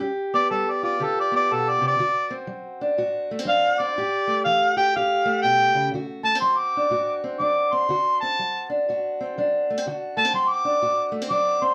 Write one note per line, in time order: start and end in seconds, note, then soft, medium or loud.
0.00 0.47 G2 medium
0.00 0.99 G4 medium
0.34 1.30 B3 medium
0.34 0.50 D5 loud
0.50 0.97 G3 medium
0.50 0.72 A4 medium
0.71 0.83 D5 medium
0.83 1.98 F4 medium
0.83 1.05 D5 medium
1.00 1.47 D3 medium
1.00 1.97 G4 medium
1.00 1.18 A4 medium
1.20 1.35 D5 medium
1.32 1.97 B3 medium
1.36 1.55 D5 loud
1.51 1.81 B2 medium
1.51 1.71 A4 medium
1.69 1.84 D5 medium
1.81 1.99 C3 medium
1.87 2.33 D5 loud
1.99 2.45 D3 medium
1.99 2.97 F#4 medium
2.31 3.29 C4 medium
2.47 2.94 F#3 medium
2.81 3.45 D4 medium
2.98 3.44 A2 medium
2.98 3.96 F#4 medium
3.31 3.39 A3 medium
3.39 3.78 C4 medium
3.45 3.92 F#3 medium
3.45 3.94 D4 medium
3.45 3.82 F5 loud
3.80 3.95 C4 medium
3.80 4.44 D5 loud
3.98 4.43 A2 medium
3.98 4.75 G4 medium
4.27 5.24 A3 medium
4.44 4.91 E3 medium
4.44 4.75 F5 loud
4.77 4.94 G4 medium
4.77 4.94 G5 loud
4.96 5.41 A2 medium
4.96 5.91 G4 medium
4.96 5.42 F5 medium
5.25 6.22 A3 medium
5.42 5.74 B2 medium
5.42 5.90 G5 loud
5.74 5.92 C#3 medium
5.94 6.39 D3 medium
5.94 6.91 F#4 medium
6.23 6.35 A3 medium
6.23 6.40 A5 medium
6.35 7.23 C4 soft
6.41 6.87 F#3 medium
6.41 6.59 C6 medium
6.57 7.21 D6 medium
6.77 7.41 D4 medium
6.90 7.36 A2 medium
6.90 7.90 F#4 medium
7.24 7.72 C4 medium
7.39 7.85 F#3 medium
7.39 8.25 D4 medium
7.39 7.75 D6 medium
7.73 7.92 C4 medium
7.73 8.20 C6 loud
7.89 8.34 D3 medium
7.89 8.89 F#4 medium
8.20 9.20 C4 medium
8.20 8.68 A5 medium
8.39 8.84 F#3 medium
8.70 9.38 D4 medium
8.89 9.33 A2 medium
8.89 9.87 F#4 medium
9.21 9.70 C4 medium
9.38 9.82 F#3 medium
9.38 10.28 D4 medium
9.70 9.78 A3 medium
9.78 9.85 C4 medium
9.87 10.31 D3 medium
9.87 10.82 F#4 medium
10.17 10.25 A3 medium
10.17 10.33 A5 loud
10.25 11.11 C4 medium
10.34 10.79 F#3 medium
10.34 10.50 C6 medium
10.49 11.12 D6 loud
10.65 11.29 D4 medium
10.82 11.27 A2 medium
10.82 11.74 F#4 medium
11.12 11.22 A3 medium
11.22 11.61 C4 medium
11.30 11.74 F#3 medium
11.30 11.74 D4 medium
11.30 11.65 D6 medium
11.62 11.74 C4 medium
11.62 11.74 C6 loud